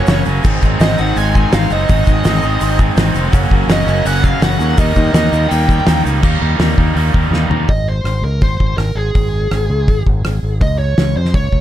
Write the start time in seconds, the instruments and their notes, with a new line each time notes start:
Already playing: overdriven electric guitar F#2, transistor combo organ F#4 A#4 G#5, lead electric guitar C#5
0.07 fingered electric bass F#1, overdriven electric guitar C#3 F#3 A#3 C#4, snare, open hi-hat, shaker
0.25 fingered electric bass F#1, overdriven electric guitar A#3 C#4, shaker
0.30 overdriven electric guitar F#3
0.35 shaker
0.44 fingered electric bass G#1, overdriven electric guitar G#2 D#3 G#3 C4, transistor combo organ D#4 C5, kick, crash, shaker
0.48 overdriven electric guitar D#4
0.53 shaker
0.62 fingered electric bass G#1, overdriven electric guitar G#3 C4 D#4, kick, shaker
0.80 fingered electric bass G#1, overdriven electric guitar D#3 G#3 C4 D#4, lead electric guitar D#5, snare, open hi-hat, shaker
0.91 snare
0.98 fingered electric bass G#1, overdriven electric guitar G#2 D#3 G#3 C4 D#4, lead electric guitar F#5, shaker
1.07 shaker
1.16 fingered electric bass G#1, overdriven electric guitar D#3 G#3 C4, lead electric guitar G#5, open hi-hat, shaker
1.20 overdriven electric guitar D#4
1.34 overdriven electric guitar G#2 D#3 G#3 C4 D#4, lead electric guitar G#5, kick, shaker
1.52 fingered electric bass G#1, overdriven electric guitar D#3 G#3 C4 D#4, lead electric guitar F5, snare, open hi-hat, shaker
1.70 fingered electric bass F#1, overdriven electric guitar G#3 C4 D#4, lead electric guitar D#5, shaker
1.80 shaker
1.88 fingered electric bass G#1, overdriven electric guitar G#2 D#3 G#3 C4 D#4, kick, open hi-hat, shaker
1.98 shaker
2.06 fingered electric bass G#1, overdriven electric guitar C4 D#4, kick, shaker
2.11 overdriven electric guitar G#3
2.24 fingered electric bass G#1, overdriven electric guitar D#3 G#3 C4, snare, open hi-hat, shaker
2.29 overdriven electric guitar D#4
2.34 snare
2.42 fingered electric bass G#1, overdriven electric guitar D#3 G#3 C4 D#4, shaker
2.46 overdriven electric guitar G#2
2.52 shaker
2.60 fingered electric bass G#1, overdriven electric guitar D#3 G#3 C4 D#4, open hi-hat, shaker
2.78 overdriven electric guitar G#2 D#3 G#3 C4 D#4, kick, shaker
2.97 fingered electric bass G#1, overdriven electric guitar D#3 G#3 C4 D#4, snare, open hi-hat, shaker
3.14 fingered electric bass F1, overdriven electric guitar G#3 C4 D#4, shaker
3.31 fingered electric bass F#1, overdriven electric guitar F#2 C#3 F#3 A#3 C#4, transistor combo organ F#4 A#4 G#5, kick, open hi-hat, shaker
3.50 fingered electric bass F#1, overdriven electric guitar F#3 A#3 C#4, kick
3.68 fingered electric bass F#1, overdriven electric guitar C#3 F#3 A#3, snare, open hi-hat, shaker
3.72 overdriven electric guitar C#4, lead electric guitar D#5
3.79 shaker
3.86 fingered electric bass F#1, overdriven electric guitar F#2 C#3 F#3 A#3 C#4, lead electric guitar D#5, shaker
3.97 shaker
4.05 fingered electric bass F#1, overdriven electric guitar C#3 F#3 A#3 C#4, lead electric guitar F#5, open hi-hat, shaker
4.23 overdriven electric guitar F#2 C#3 F#3 A#3 C#4, lead electric guitar F5, kick, shaker
4.41 fingered electric bass F#1, overdriven electric guitar C#3 F#3 A#3 C#4, lead electric guitar F#5, snare, open hi-hat, shaker
4.59 fingered electric bass D#2, overdriven electric guitar F#3 A#3 C#4, shaker
4.69 shaker
4.77 fingered electric bass D#2, overdriven electric guitar D#3 G3 A#3 D#4, transistor combo organ D#4 G5, lead electric guitar D#5, kick, open hi-hat, shaker
4.87 shaker
4.96 fingered electric bass D#2, overdriven electric guitar A#3 D#4, kick, shaker
5.00 overdriven electric guitar G3
5.06 shaker
5.13 fingered electric bass D#2, overdriven electric guitar D#3 G3 A#3, lead electric guitar D#5, snare, open hi-hat, shaker
5.17 overdriven electric guitar D#4
5.24 snare
5.32 fingered electric bass D#2, overdriven electric guitar D#3 G3 A#3 D#4, shaker
5.48 fingered electric bass D#2, overdriven electric guitar D#3 G3 A#3 D#4, lead electric guitar G5, open hi-hat, shaker
5.67 overdriven electric guitar D#3 G3 A#3 D#4, kick, shaker
5.84 fingered electric bass D#2, overdriven electric guitar D#3 G3 A#3 D#4, snare, open hi-hat, shaker
6.04 fingered electric bass C#2, overdriven electric guitar G3 A#3 D#4, shaker
6.15 shaker
6.21 fingered electric bass D#2, overdriven electric guitar D#3 G3 A#3 D#4, kick, crash
6.40 fingered electric bass D#2, overdriven electric guitar G3 A#3 D#4
6.58 fingered electric bass D#2, overdriven electric guitar D#3 G3 A#3 D#4, snare, open hi-hat
6.77 fingered electric bass D#2, overdriven electric guitar G3 A#3 D#4, kick
6.95 fingered electric bass D#2, overdriven electric guitar D#3 G3 A#3 D#4, open hi-hat
7.13 fingered electric bass D#2, overdriven electric guitar D#3 G3 A#3 D#4, kick
7.31 fingered electric bass D#2, overdriven electric guitar D#3 G3 A#3, snare
7.35 overdriven electric guitar D#4
7.49 fingered electric bass D#2, overdriven electric guitar A#3 D#4, floor tom
7.53 overdriven electric guitar G3
7.68 fingered electric bass G#1, lead electric guitar D#5, kick, open hi-hat
7.88 lead electric guitar C5
8.04 fingered electric bass G#1, cross-stick, open hi-hat
8.22 fingered electric bass C#2, lead electric guitar A#4
8.41 fingered electric bass G#1, lead electric guitar C5, kick, open hi-hat
8.60 fingered electric bass G#1, kick
8.78 fingered electric bass G#1, lead electric guitar A#4, cross-stick, open hi-hat
8.95 fingered electric bass G#1, lead electric guitar G#4
9.15 fingered electric bass G#1, kick, open hi-hat
9.51 fingered electric bass G#1, cross-stick, open hi-hat
9.70 fingered electric bass C#2
9.88 fingered electric bass G#1, kick, open hi-hat
10.06 fingered electric bass G#1, kick
10.25 fingered electric bass G#1, cross-stick, open hi-hat
10.43 fingered electric bass G#1
10.61 fingered electric bass C#2, lead electric guitar D#5, kick, open hi-hat
10.79 lead electric guitar C#5
10.98 fingered electric bass C#2, snare, open hi-hat
11.16 fingered electric bass F2, lead electric guitar C5
11.25 snare
11.34 fingered electric bass C#2, lead electric guitar C#5, kick, open hi-hat
11.52 fingered electric bass C#2, kick